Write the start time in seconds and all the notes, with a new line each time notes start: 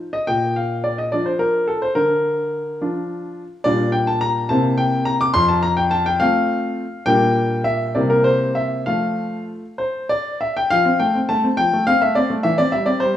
Already playing: C5
0.13 D#5
0.27 A#2 G5
0.56 F5
0.84 D5
0.98 D#5
1.12 F3 D4 F4 D5
1.26 C5
1.39 A#4
1.68 A4
1.82 C5
1.95 D3 A#4
2.81 F3 D4 F4
3.64 A#2 G3 D4 F4 D5
3.92 G5
4.07 A5
4.21 A#5
4.49 C3 A#3 C4 E4 A5
4.78 G5
5.05 A#5
5.21 D6
5.34 F2 C6
5.49 A5
5.63 A#5
5.77 G5
5.91 A5
6.06 G5
6.20 A3 C4 F4 F5
7.06 A#2 G3 A#3 D4 G5
7.64 E5
7.95 C3 G3 A#3 E4 D5
8.10 A#4
8.24 C5
8.55 E5
8.86 F3 A3 F4 F5
9.78 C5
10.09 D5
10.41 E5
10.57 G5
10.70 F3 F5
10.85 C4
11.00 A3 G5
11.15 C4
11.29 A3 A5
11.44 C4
11.57 F3 G5
11.73 A3
11.87 C4 F5
12.02 A3 E5
12.15 C4 D5
12.30 A3
12.43 E3 E5
12.58 C4 D5
12.72 G3 E5
12.86 C4 D5
13.00 G3 C5